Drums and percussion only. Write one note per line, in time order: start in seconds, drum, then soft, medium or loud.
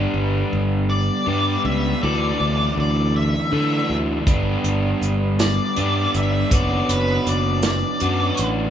4.27 kick loud
4.27 closed hi-hat medium
4.64 closed hi-hat medium
5.02 closed hi-hat medium
5.39 snare medium
5.39 closed hi-hat medium
5.76 closed hi-hat medium
6.14 closed hi-hat medium
6.51 kick loud
6.51 closed hi-hat loud
6.89 closed hi-hat medium
7.27 closed hi-hat medium
7.62 snare loud
7.62 closed hi-hat medium
8.00 closed hi-hat medium
8.37 closed hi-hat medium